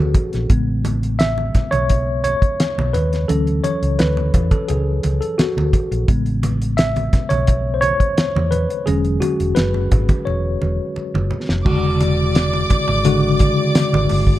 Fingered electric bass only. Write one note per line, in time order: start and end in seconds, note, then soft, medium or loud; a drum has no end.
0.00 0.13 D2 medium
0.34 0.48 A#1 medium
0.50 1.51 A1 loud
1.55 muted fingered electric bass stroke soft
1.74 2.33 B1 medium
2.78 2.93 B1 medium
2.95 3.25 D#2 medium
3.30 3.60 D2 loud
3.82 3.97 C#2 medium
4.00 4.30 D2 medium
4.35 4.49 E2 medium
4.70 4.99 C#2 medium
5.05 5.19 C#2 medium
5.39 muted fingered electric bass stroke soft
5.57 5.71 D2 medium
5.91 6.06 A#1 medium
6.09 7.09 A1 medium
7.14 muted fingered electric bass stroke soft
7.31 7.91 B1 medium
8.19 muted fingered electric bass stroke soft
8.36 8.65 E2 medium
8.88 9.18 E1 loud
9.40 9.55 E1 medium
9.57 9.87 F#1 medium
9.92 10.07 G#1 medium
10.27 10.57 E1 medium
10.63 10.77 E1 medium
10.97 muted fingered electric bass stroke soft
11.14 11.29 F#1 medium
11.49 11.64 F1 medium
11.66 12.67 E1 loud
12.71 muted fingered electric bass stroke soft
12.89 13.49 G#1 medium
13.93 14.08 G#1 medium
14.11 14.39 G1 medium